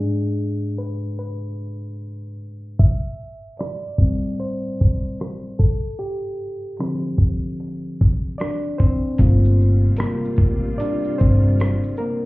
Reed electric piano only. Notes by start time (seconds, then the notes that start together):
Already playing: G#4
0.00 G#2 G#3 D4
0.78 B4
1.19 B4
2.79 E5
3.59 D5
3.99 A2 G3 C4
4.40 C5
5.59 A4
5.99 G4
6.79 D3 F3 C4
8.38 D4 D5
8.78 C4 C5
9.19 A3 A#3 C4 F4
9.98 A#3 A#4
10.78 D4 D5
11.18 C4 C5
11.98 A#3 A#4